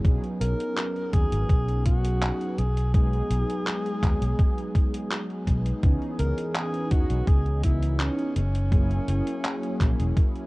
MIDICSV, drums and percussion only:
0, 0, Header, 1, 2, 480
1, 0, Start_track
1, 0, Tempo, 722892
1, 33, Time_signature, 4, 2, 24, 8
1, 6949, End_track
2, 0, Start_track
2, 0, Title_t, "Drums"
2, 33, Note_on_c, 9, 36, 117
2, 34, Note_on_c, 9, 42, 51
2, 99, Note_off_c, 9, 36, 0
2, 100, Note_off_c, 9, 42, 0
2, 158, Note_on_c, 9, 42, 26
2, 225, Note_off_c, 9, 42, 0
2, 274, Note_on_c, 9, 42, 91
2, 341, Note_off_c, 9, 42, 0
2, 400, Note_on_c, 9, 42, 49
2, 466, Note_off_c, 9, 42, 0
2, 514, Note_on_c, 9, 39, 117
2, 514, Note_on_c, 9, 42, 51
2, 580, Note_off_c, 9, 39, 0
2, 580, Note_off_c, 9, 42, 0
2, 638, Note_on_c, 9, 42, 26
2, 705, Note_off_c, 9, 42, 0
2, 752, Note_on_c, 9, 42, 92
2, 753, Note_on_c, 9, 36, 104
2, 819, Note_off_c, 9, 36, 0
2, 819, Note_off_c, 9, 42, 0
2, 879, Note_on_c, 9, 42, 52
2, 945, Note_off_c, 9, 42, 0
2, 992, Note_on_c, 9, 36, 116
2, 995, Note_on_c, 9, 42, 50
2, 1059, Note_off_c, 9, 36, 0
2, 1061, Note_off_c, 9, 42, 0
2, 1119, Note_on_c, 9, 42, 26
2, 1185, Note_off_c, 9, 42, 0
2, 1232, Note_on_c, 9, 42, 90
2, 1233, Note_on_c, 9, 36, 61
2, 1299, Note_off_c, 9, 36, 0
2, 1299, Note_off_c, 9, 42, 0
2, 1358, Note_on_c, 9, 42, 51
2, 1424, Note_off_c, 9, 42, 0
2, 1474, Note_on_c, 9, 39, 114
2, 1474, Note_on_c, 9, 42, 50
2, 1540, Note_off_c, 9, 39, 0
2, 1540, Note_off_c, 9, 42, 0
2, 1599, Note_on_c, 9, 42, 26
2, 1665, Note_off_c, 9, 42, 0
2, 1715, Note_on_c, 9, 42, 90
2, 1781, Note_off_c, 9, 42, 0
2, 1839, Note_on_c, 9, 42, 51
2, 1906, Note_off_c, 9, 42, 0
2, 1953, Note_on_c, 9, 36, 115
2, 1954, Note_on_c, 9, 42, 49
2, 2019, Note_off_c, 9, 36, 0
2, 2021, Note_off_c, 9, 42, 0
2, 2080, Note_on_c, 9, 42, 24
2, 2146, Note_off_c, 9, 42, 0
2, 2195, Note_on_c, 9, 42, 84
2, 2261, Note_off_c, 9, 42, 0
2, 2322, Note_on_c, 9, 42, 48
2, 2388, Note_off_c, 9, 42, 0
2, 2435, Note_on_c, 9, 39, 120
2, 2435, Note_on_c, 9, 42, 49
2, 2502, Note_off_c, 9, 39, 0
2, 2502, Note_off_c, 9, 42, 0
2, 2562, Note_on_c, 9, 42, 24
2, 2628, Note_off_c, 9, 42, 0
2, 2673, Note_on_c, 9, 36, 104
2, 2676, Note_on_c, 9, 39, 61
2, 2676, Note_on_c, 9, 42, 84
2, 2739, Note_off_c, 9, 36, 0
2, 2743, Note_off_c, 9, 39, 0
2, 2743, Note_off_c, 9, 42, 0
2, 2800, Note_on_c, 9, 42, 50
2, 2867, Note_off_c, 9, 42, 0
2, 2913, Note_on_c, 9, 36, 119
2, 2915, Note_on_c, 9, 42, 50
2, 2980, Note_off_c, 9, 36, 0
2, 2982, Note_off_c, 9, 42, 0
2, 3040, Note_on_c, 9, 42, 26
2, 3106, Note_off_c, 9, 42, 0
2, 3153, Note_on_c, 9, 36, 104
2, 3155, Note_on_c, 9, 42, 83
2, 3220, Note_off_c, 9, 36, 0
2, 3221, Note_off_c, 9, 42, 0
2, 3280, Note_on_c, 9, 42, 51
2, 3346, Note_off_c, 9, 42, 0
2, 3394, Note_on_c, 9, 39, 118
2, 3394, Note_on_c, 9, 42, 48
2, 3461, Note_off_c, 9, 39, 0
2, 3461, Note_off_c, 9, 42, 0
2, 3519, Note_on_c, 9, 42, 25
2, 3585, Note_off_c, 9, 42, 0
2, 3633, Note_on_c, 9, 36, 60
2, 3633, Note_on_c, 9, 42, 86
2, 3699, Note_off_c, 9, 36, 0
2, 3700, Note_off_c, 9, 42, 0
2, 3757, Note_on_c, 9, 42, 50
2, 3823, Note_off_c, 9, 42, 0
2, 3872, Note_on_c, 9, 42, 50
2, 3873, Note_on_c, 9, 36, 110
2, 3938, Note_off_c, 9, 42, 0
2, 3939, Note_off_c, 9, 36, 0
2, 3996, Note_on_c, 9, 42, 24
2, 4063, Note_off_c, 9, 42, 0
2, 4111, Note_on_c, 9, 42, 83
2, 4177, Note_off_c, 9, 42, 0
2, 4236, Note_on_c, 9, 42, 48
2, 4302, Note_off_c, 9, 42, 0
2, 4351, Note_on_c, 9, 39, 113
2, 4351, Note_on_c, 9, 42, 47
2, 4417, Note_off_c, 9, 39, 0
2, 4417, Note_off_c, 9, 42, 0
2, 4476, Note_on_c, 9, 42, 24
2, 4542, Note_off_c, 9, 42, 0
2, 4590, Note_on_c, 9, 42, 84
2, 4592, Note_on_c, 9, 36, 99
2, 4657, Note_off_c, 9, 42, 0
2, 4659, Note_off_c, 9, 36, 0
2, 4716, Note_on_c, 9, 42, 49
2, 4782, Note_off_c, 9, 42, 0
2, 4831, Note_on_c, 9, 42, 49
2, 4832, Note_on_c, 9, 36, 118
2, 4898, Note_off_c, 9, 36, 0
2, 4898, Note_off_c, 9, 42, 0
2, 4955, Note_on_c, 9, 42, 24
2, 5021, Note_off_c, 9, 42, 0
2, 5071, Note_on_c, 9, 42, 83
2, 5072, Note_on_c, 9, 36, 58
2, 5137, Note_off_c, 9, 42, 0
2, 5138, Note_off_c, 9, 36, 0
2, 5197, Note_on_c, 9, 42, 48
2, 5263, Note_off_c, 9, 42, 0
2, 5311, Note_on_c, 9, 39, 114
2, 5311, Note_on_c, 9, 42, 48
2, 5377, Note_off_c, 9, 39, 0
2, 5377, Note_off_c, 9, 42, 0
2, 5436, Note_on_c, 9, 42, 24
2, 5503, Note_off_c, 9, 42, 0
2, 5552, Note_on_c, 9, 42, 82
2, 5619, Note_off_c, 9, 42, 0
2, 5678, Note_on_c, 9, 42, 48
2, 5744, Note_off_c, 9, 42, 0
2, 5792, Note_on_c, 9, 36, 107
2, 5793, Note_on_c, 9, 42, 48
2, 5858, Note_off_c, 9, 36, 0
2, 5859, Note_off_c, 9, 42, 0
2, 5917, Note_on_c, 9, 42, 24
2, 5984, Note_off_c, 9, 42, 0
2, 6033, Note_on_c, 9, 42, 84
2, 6099, Note_off_c, 9, 42, 0
2, 6158, Note_on_c, 9, 42, 49
2, 6224, Note_off_c, 9, 42, 0
2, 6273, Note_on_c, 9, 39, 106
2, 6273, Note_on_c, 9, 42, 49
2, 6340, Note_off_c, 9, 39, 0
2, 6340, Note_off_c, 9, 42, 0
2, 6398, Note_on_c, 9, 42, 23
2, 6464, Note_off_c, 9, 42, 0
2, 6512, Note_on_c, 9, 36, 96
2, 6514, Note_on_c, 9, 39, 56
2, 6514, Note_on_c, 9, 42, 88
2, 6578, Note_off_c, 9, 36, 0
2, 6580, Note_off_c, 9, 39, 0
2, 6580, Note_off_c, 9, 42, 0
2, 6639, Note_on_c, 9, 42, 47
2, 6705, Note_off_c, 9, 42, 0
2, 6752, Note_on_c, 9, 36, 111
2, 6753, Note_on_c, 9, 42, 49
2, 6819, Note_off_c, 9, 36, 0
2, 6819, Note_off_c, 9, 42, 0
2, 6877, Note_on_c, 9, 42, 24
2, 6944, Note_off_c, 9, 42, 0
2, 6949, End_track
0, 0, End_of_file